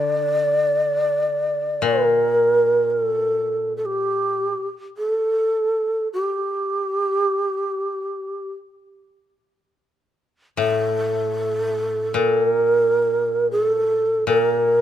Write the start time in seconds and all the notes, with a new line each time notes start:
Already playing: D3 D5
1.82 A#2 A#4
2.90 A#4
3.01 A4
3.77 A4
3.85 G4
4.97 A4
6.13 G4
10.57 A2 A4
12.14 A#2 A4
12.48 A#4
13.51 G#4
13.63 A4
14.27 A#2 A4
14.39 A#4